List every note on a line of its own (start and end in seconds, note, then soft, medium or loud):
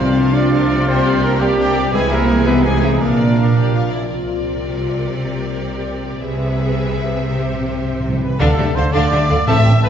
0.00 1.90 C2 medium
0.00 0.30 C3 medium
0.00 0.88 C3 medium
0.00 1.90 C3 medium
0.00 0.85 F3 medium
0.00 1.90 A#3 medium
0.00 1.05 A#3 soft
0.00 0.33 C4 medium
0.00 0.90 C4 soft
0.00 0.16 F4 medium
0.00 1.42 F4 medium
0.00 0.36 C5 medium
0.00 0.17 D5 medium
0.09 0.79 F4 medium
0.16 0.34 D4 medium
0.16 0.34 A#4 medium
0.16 0.70 D5 soft
0.16 0.34 F5 medium
0.26 0.62 A#4 medium
0.33 0.86 D4 loud
0.33 0.53 F4 medium
0.33 0.52 D5 medium
0.33 0.90 D5 medium
0.33 0.53 D5 medium
0.33 0.52 F5 medium
0.44 1.48 D6 medium
0.52 0.70 D4 medium
0.52 0.70 A#4 medium
0.52 0.69 F5 medium
0.52 0.90 F5 medium
0.63 1.31 A#4 medium
0.70 0.89 F4 medium
0.70 0.88 D5 medium
0.70 0.89 D5 medium
0.80 0.90 F4 medium
0.86 1.92 C3 medium
0.86 1.94 G3 medium
0.86 1.21 C4 loud
0.86 1.05 D4 medium
0.86 1.05 A#4 medium
0.86 1.25 C5 medium
0.86 1.05 G5 medium
0.97 1.95 G3 soft
1.06 1.95 A#3 medium
1.06 1.24 G4 medium
1.06 1.23 D5 medium
1.15 1.84 G4 medium
1.23 1.41 A#3 medium
1.23 1.41 D4 medium
1.23 1.43 A#4 medium
1.23 1.42 A#4 medium
1.23 1.74 D5 medium
1.23 1.41 G5 medium
1.32 1.66 A#4 medium
1.40 1.92 G3 loud
1.40 1.93 G4 loud
1.40 1.58 G4 medium
1.40 1.93 G4 loud
1.40 1.58 D5 medium
1.40 1.57 G5 medium
1.49 1.94 D6 medium
1.58 1.75 D4 medium
1.58 1.75 A#4 medium
1.58 1.95 G5 medium
1.58 1.75 G5 medium
1.67 1.95 A#4 medium
1.76 1.93 G4 medium
1.76 1.94 D5 medium
1.85 1.95 G4 medium
1.91 2.99 C2 medium
1.91 3.02 C3 medium
1.91 2.99 C3 medium
1.91 2.10 G#3 loud
1.91 2.47 E4 medium
1.91 2.10 G#4 medium
1.91 2.01 G#4 loud
1.91 2.09 B4 medium
1.91 2.10 G#5 medium
1.96 3.02 E3 medium
1.96 3.02 G#3 medium
2.02 3.02 G#3 medium
2.10 2.46 A#3 loud
2.10 3.02 B3 medium
2.10 2.29 E4 medium
2.10 2.28 G#4 medium
2.10 2.46 A#4 medium
2.10 2.29 E5 medium
2.20 3.02 E3 medium
2.29 2.47 G#4 medium
2.29 2.47 B4 medium
2.29 2.46 G#5 medium
2.29 3.02 G#5 medium
2.37 2.72 B4 medium
2.46 2.63 B3 loud
2.46 3.03 D#4 medium
2.46 2.64 E4 medium
2.46 2.65 G#4 medium
2.46 2.64 B4 medium
2.46 2.64 E5 medium
2.64 3.00 G#3 medium
2.64 3.00 G#4 medium
2.64 2.81 G#4 medium
2.64 2.81 B4 medium
2.64 2.81 G#5 medium
2.82 3.01 E4 medium
2.82 3.01 G#4 medium
2.82 3.01 E5 medium
2.92 3.02 E4 soft
3.00 3.92 A#1 medium
3.00 3.92 A#2 medium
3.00 4.12 A#2 medium
3.00 3.91 F3 medium
3.00 3.92 A#3 medium
3.00 3.90 D4 medium
3.00 3.83 D4 medium
3.00 3.18 D4 medium
3.00 3.17 A#4 soft
3.00 3.90 A#4 medium
3.00 3.18 F5 medium
3.11 5.19 F3 soft
3.18 4.27 A#3 soft
3.18 3.37 F4 soft
3.18 3.37 D5 soft
3.29 3.99 F4 soft
3.37 3.55 D4 medium
3.37 3.55 A#4 medium
3.37 3.90 D5 soft
3.37 3.55 F5 soft
3.47 3.81 A#4 soft
3.55 3.72 G4 medium
3.55 3.74 D5 medium
3.55 3.72 F5 medium
3.64 6.24 D6 soft
3.73 3.92 F4 medium
3.73 3.91 A#4 soft
3.73 5.18 F5 medium
3.73 3.90 F5 soft
3.82 4.62 A#4 soft
3.90 4.10 E4 medium
3.90 4.07 D5 soft
3.90 4.45 D5 medium
3.90 4.10 D5 medium
4.01 4.98 F4 soft
4.08 6.19 C2 soft
4.08 6.18 C3 soft
4.08 5.15 C3 soft
4.08 5.13 F4 soft
4.08 6.19 A#4 soft
4.08 6.18 D5 soft
4.28 5.33 A#3 soft
4.46 4.80 D5 soft
4.63 5.69 A#4 soft
4.81 5.51 D5 soft
4.99 5.18 F4 soft
5.16 6.21 C3 soft
5.16 6.22 G4 soft
5.34 6.24 A#3 soft
5.52 5.85 D5 soft
5.70 6.24 A#4 soft
5.87 6.23 D5 soft
6.05 6.24 G4 soft
6.21 8.18 C2 medium
6.21 7.29 C3 soft
6.21 8.18 C3 medium
6.21 7.28 G#4 soft
6.21 7.28 B4 medium
6.21 8.21 E5 soft
6.40 7.32 B3 soft
6.57 6.92 E5 soft
6.75 7.31 B4 soft
6.94 7.65 E5 soft
7.12 7.32 G#4 soft
7.30 8.41 C3 soft
7.30 8.22 G4 soft
7.30 8.20 C5 soft
7.38 7.45 C3 soft
7.48 8.41 C4 soft
7.54 7.60 C3 soft
7.61 7.67 C3 soft
7.67 7.76 C3 soft
7.67 8.02 E5 soft
7.77 7.83 C3 soft
7.84 7.91 C3 soft
7.84 8.41 C5 soft
7.92 7.99 C3 soft
8.00 8.07 C3 soft
8.00 8.41 E5 soft
8.08 8.14 C3 soft
8.15 8.22 C3 medium
8.21 8.29 C3 medium
8.21 8.41 G4 soft
8.21 8.41 B4 medium
8.21 8.40 B4 medium
8.30 8.37 C3 medium
8.39 8.48 D2 medium
8.39 9.49 D3 medium
8.39 8.47 D3 medium
8.39 8.56 D4 medium
8.39 8.56 A4 medium
8.39 8.77 A4 medium
8.39 8.56 F5 medium
8.58 8.66 D2 medium
8.58 8.66 D3 medium
8.58 9.30 A3 medium
8.58 8.65 D4 medium
8.58 8.65 G4 medium
8.58 8.65 E5 medium
8.75 8.83 D2 medium
8.75 8.83 D3 medium
8.75 8.83 D4 medium
8.75 8.82 A4 medium
8.75 8.94 C5 medium
8.75 8.84 C5 medium
8.75 9.12 D5 medium
8.75 8.84 F5 soft
8.93 9.02 D2 medium
8.93 9.01 D3 medium
8.93 9.10 D4 medium
8.93 9.10 A4 medium
8.93 9.47 D5 medium
8.93 9.11 F5 medium
9.11 9.20 D2 medium
9.11 9.19 D3 medium
9.11 9.18 D4 medium
9.11 9.19 G4 medium
9.11 9.20 E5 medium
9.29 9.38 D2 medium
9.29 9.37 D3 medium
9.29 9.65 A3 medium
9.29 9.37 D4 medium
9.29 9.37 A4 medium
9.29 9.37 F5 medium
9.47 9.55 A1 medium
9.47 9.89 A2 loud
9.47 9.89 A2 medium
9.47 9.55 A2 medium
9.47 9.64 C4 medium
9.47 9.64 A4 medium
9.47 9.82 E5 loud
9.47 9.83 E5 medium
9.47 9.64 A5 medium
9.65 9.73 A1 medium
9.65 9.73 A2 medium
9.65 9.89 A3 medium
9.65 9.72 C4 medium
9.65 9.73 G4 medium
9.65 9.72 G5 medium
9.82 9.89 A1 medium
9.82 9.89 A2 medium
9.82 9.89 C4 medium
9.82 9.89 A4 medium
9.82 9.89 B4 medium
9.82 9.89 A5 medium